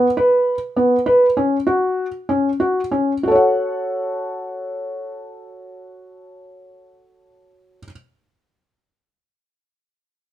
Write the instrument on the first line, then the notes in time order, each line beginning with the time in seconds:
felt piano
0.17 B4
0.76 B3
1.06 B4
1.37 C#4
1.67 F#4
2.29 C#4
2.60 F#4
2.91 C#4
3.23 F#4
3.28 A4 C#5
3.35 F#5